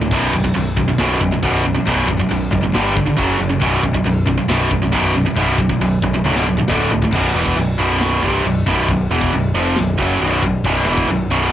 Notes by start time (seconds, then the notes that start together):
Already playing: D1
0.01 D2 A2
0.11 B0 B1 F#2 B2, kick, crash, china
0.33 B0 B1 F#2, kick
0.44 B1 F#2, kick
0.55 B0 B1 F#2, china
0.76 B1 F#2, kick
0.88 B1 F#2
0.98 B0 B1 F#2 B2, snare, china
1.21 B0 B1 F#2, kick
1.31 B1 F#2
1.42 B0 B1 F#2 B2, kick, china
1.64 B1 F#2
1.75 B1 F#2
1.85 B0 B1 F#2 B2, kick, china
2.07 B1 F#2, kick
2.17 B1 F#2, kick
2.29 B0 B1 F#2, china
2.51 F#1 B1 F#2, kick
2.61 B1 F#2
2.73 G1 G2 D3 G3, snare, china
2.95 G2 D3, kick
3.06 G2 D3
3.16 F#1 F#2 C#3 F#3, kick, china
3.39 F#1 F#2 C#3
3.50 F#2 C#3
3.60 B0 B1 F#2 B2, kick, china
3.82 B0 B1 F#2, kick
3.93 B1 F#2, kick
4.04 B0 B1 F#2, china
4.26 B1 F#2, kick
4.37 B1 F#2
4.48 B0 B1 F#2 B2, snare, china
4.70 B0 B1 F#2, kick
4.82 B1 F#2
4.92 B0 B1 F#2 B2, kick, china
5.15 B1 F#2
5.25 B1 F#2
5.35 B0 B1 F#2 B2, kick, china
5.58 B1 F#2, kick
5.69 B1 F#2, kick
5.80 B0 B1 F#2, china
6.02 B0 B1 F#2, kick
6.14 B1 F#2
6.24 C#1 B1 F#2 B2, high tom
6.36 snare
6.46 B1 F#2
6.57 B1 F#2, mid tom
6.68 D1 D2 A2 D3, kick, snare
6.89 D1 D2 A2, floor tom
7.02 D2 A2, floor tom
7.11 B0 B1 F#2 B2, kick, crash, china
7.34 E1 E2 B2 E3
7.46 kick
7.57 B0 B1 F#2, china
7.78 B0 B1 F#2 B2
8.01 snare, china
8.22 C1 C2 G2 C3, kick
8.44 B0 B1 F#2, china
8.66 B0 B1 F#2 B2, kick
8.88 B0 B1 F#2, kick, china
9.09 E1 E2 B2 E3
9.21 kick
9.32 B0 B1 F#2, china
9.54 F1 F2 C3 F3
9.76 B0 B1 F#2, snare, china
9.98 F#1 F#2 C#3 F#3, kick
10.20 B0 B1 F#2 B2, china
10.42 B0 B1 F#2, kick
10.64 B0 B1 F#2 B2, kick, china
10.86 E1 E2 B2 E3
10.97 kick
11.08 B0 B1 F#2, china
11.29 B0 B1 F#2 B2